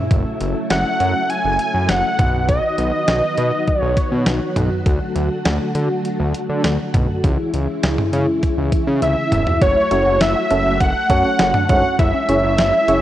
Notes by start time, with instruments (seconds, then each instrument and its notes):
Already playing: string machine C#3 E4
0.11 analog synth bass F#1, string machine F#3 A3, kick, closed hi-hat
0.41 analog synth bass F#1, closed hi-hat
0.70 analog synth bass F#1, analog synth lead F#5, snare, closed hi-hat
1.00 analog synth bass F#2, closed hi-hat
1.30 analog synth lead G#5, closed hi-hat
1.45 analog synth bass F#1
1.59 closed hi-hat
1.74 analog synth bass F#2
1.89 analog synth bass F#1, analog synth lead F#5, snare, closed hi-hat
2.19 analog synth bass B1, string machine D#3 F#3 B3 F#4, kick, closed hi-hat, mid tom
2.48 analog synth lead D#5, kick, closed hi-hat
2.78 analog synth bass B1, closed hi-hat
3.08 analog synth bass B1, snare, closed hi-hat
3.37 analog synth bass B2, closed hi-hat
3.67 kick, closed hi-hat
3.81 analog synth bass B1, analog synth lead C#5
3.97 kick, closed hi-hat
4.12 analog synth bass B2
4.26 analog synth bass B1, snare, closed hi-hat
4.56 analog synth bass B1, closed hi-hat, mid tom
4.86 analog synth bass D2, string machine D3 A3, kick, closed hi-hat
5.16 analog synth bass D2, closed hi-hat
5.45 analog synth bass D2, snare, closed hi-hat
5.75 analog synth bass D3, closed hi-hat
6.05 closed hi-hat
6.20 analog synth bass D2
6.35 closed hi-hat
6.49 analog synth bass D3
6.64 analog synth bass D2, snare, closed hi-hat
6.94 analog synth bass B1, kick, closed hi-hat, mid tom
7.24 analog synth bass C#2, string machine C#3 E3 G#3 E4, kick, closed hi-hat
7.54 analog synth bass C#2, closed hi-hat
7.83 analog synth bass C#2, snare, closed hi-hat
7.98 mid tom
8.13 analog synth bass C#3, closed hi-hat
8.43 kick, closed hi-hat
8.58 analog synth bass C#2
8.72 kick, closed hi-hat
8.87 analog synth bass C#3
9.02 analog synth bass C#2, analog synth lead E5, closed hi-hat, high tom
9.32 analog synth bass E1, closed hi-hat, mid tom
9.47 floor tom
9.61 analog synth bass F#1, string machine F#3 A3 F#4, synth arpeggio sound F#4, analog synth lead C#5, kick, closed hi-hat
9.76 synth arpeggio sound E4
9.91 analog synth bass F#1, synth keys C#4 F#4 A4 C#5, synth arpeggio sound E4, analog synth lead C#5, closed hi-hat
10.06 analog synth bass F#1, synth arpeggio sound F#4
10.21 analog synth bass F#1, synth arpeggio sound E4, analog synth lead E5, snare, closed hi-hat
10.36 synth arpeggio sound F#4
10.50 analog synth bass F#1, synth keys C#4 F#4 A4 E5, synth arpeggio sound E4, analog synth lead E5, closed hi-hat
10.65 analog synth bass F#1
10.80 analog synth bass F#1, synth arpeggio sound F#4, analog synth lead F#5, kick, closed hi-hat
11.10 analog synth bass F#2, synth arpeggio sound C#4, synth keys C#4 F#4 A4 C#5, kick, closed hi-hat
11.25 synth keys C#4 F#4 A4 C#5
11.39 analog synth bass F#1, synth arpeggio sound F#4, snare, closed hi-hat
11.54 synth arpeggio sound D4, mid tom
11.69 analog synth bass G#1, synth keys C#4 F#4 A4 C#5, synth arpeggio sound E4, analog synth lead F#5, kick, closed hi-hat
11.99 analog synth bass F#1, string machine E3 G#3 E4, synth arpeggio sound E4, analog synth lead E5, kick, closed hi-hat
12.14 synth arpeggio sound C#4
12.29 analog synth bass F#1, synth arpeggio sound C#4, synth keys C#4 E4 G#4 C#5, closed hi-hat
12.44 analog synth bass F#1, synth arpeggio sound E4
12.58 analog synth bass F#1, synth arpeggio sound C#4, snare, closed hi-hat
12.73 synth arpeggio sound E4
12.88 analog synth bass F#1, synth keys C#4 E4 G#4 C#5, synth arpeggio sound C#4, closed hi-hat